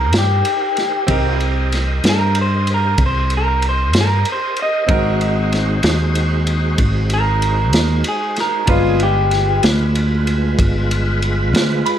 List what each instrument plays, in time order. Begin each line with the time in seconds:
Already playing: fingered electric bass C2, tonewheel organ D#4 G4 A#4 C5, grand piano G4 A#4, clean electric guitar A#4
0.13 fingered electric bass G2, snare, ride
0.18 clean electric guitar G4
0.45 ride
0.77 snare, ride
1.07 fingered electric bass C2, grand piano C4 D#4 G4, tonewheel organ G4 A#4 C5 D#5, kick, ride
1.11 grand piano A#4
1.40 ride
1.72 snare, ride
2.04 fingered electric bass G2, snare, ride
2.09 clean electric guitar A#4
2.35 ride
2.41 clean electric guitar C5
2.67 ride
2.74 clean electric guitar A#4
2.98 fingered electric bass C2, kick, ride
3.06 clean electric guitar C5
3.30 ride
3.37 clean electric guitar A#4
3.62 ride
3.69 clean electric guitar C5
3.93 fingered electric bass G2, snare, ride
4.01 clean electric guitar A#4
4.25 ride
4.32 clean electric guitar C5
4.57 ride
4.62 clean electric guitar D#5
4.86 fingered electric bass G#1, tonewheel organ G#3 D#4 F#4 C5, grand piano C4 D#4 F#4 A#4, kick, ride
5.21 ride
5.52 snare, ride
5.83 fingered electric bass D#2, snare, ride
6.15 ride
6.47 ride
6.78 fingered electric bass G#1, kick, ride
7.10 clean electric guitar A#4, ride
7.42 ride
7.72 fingered electric bass D#2, snare, ride
8.04 ride
8.09 clean electric guitar G#4
8.36 snare, ride
8.40 clean electric guitar A#4
8.66 fingered electric bass G1, tonewheel organ F#3 G#3 C4 G#4, grand piano G#3 D4 F4 B4, kick, ride
8.70 clean electric guitar F4
8.98 tonewheel organ G#3 F4 B4, ride
9.03 clean electric guitar G4
9.31 snare, ride
9.63 fingered electric bass D2, snare, ride
9.95 ride
10.27 ride
10.59 fingered electric bass G1, kick, ride
10.91 ride
11.22 ride
11.53 fingered electric bass D2, snare, ride
11.86 grand piano B5, ride